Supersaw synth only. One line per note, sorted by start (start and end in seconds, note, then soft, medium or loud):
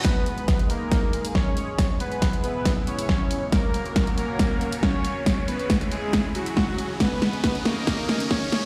0.05 0.62 B3 medium
0.05 0.62 B4 medium
0.70 1.27 A#3 medium
0.70 1.27 A#4 medium
1.35 1.92 C#4 medium
1.35 1.92 C#5 medium
2.00 2.25 B3 medium
2.00 2.25 B4 medium
2.44 2.69 B3 medium
2.44 2.69 B4 medium
2.87 3.44 C#4 medium
2.87 3.44 C#5 loud
3.52 4.09 A#3 medium
3.52 4.09 A#4 medium
4.18 4.75 A#3 medium
4.18 4.75 A#4 medium
4.83 5.40 C#4 medium
4.83 5.40 C#5 medium
5.48 5.73 B3 medium
5.48 5.73 B4 medium
5.91 6.16 G#3 medium
5.91 6.17 G#4 medium
6.35 6.92 F#3 medium
6.35 6.92 F#4 loud
7.00 7.57 B3 medium
7.00 7.57 B4 loud
7.65 8.22 A#3 medium
7.65 8.22 A#4 medium
8.31 8.65 C#4 medium
8.31 8.65 C#5 loud